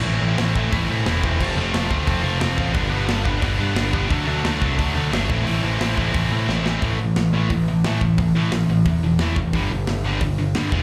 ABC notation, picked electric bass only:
X:1
M:4/4
L:1/8
Q:1/4=177
K:Am
V:1 name="Picked electric bass" clef=bass
A,,, A,,, A,,,2 A,,, A,, E,,,2 | F,,, F,,, F,,, D,, F,,, F,,, F,,, A,,, | G,,, G,,, G,,,2 G,,, G,, G,,,2 | D,, D,, D,, C,, D,, D,, G,,, A,,, |
A,,, A,,, A,,,2 A,,, A,, A,,,2 | A,,, A,,, A,,, A,,, A,,,2 A,,2 | A,,, A,,, A,,, A,,, E,, E,,, E,, F,,, | G,,, G,,, G,,, G,,, G,,,2 G,, E,,, |]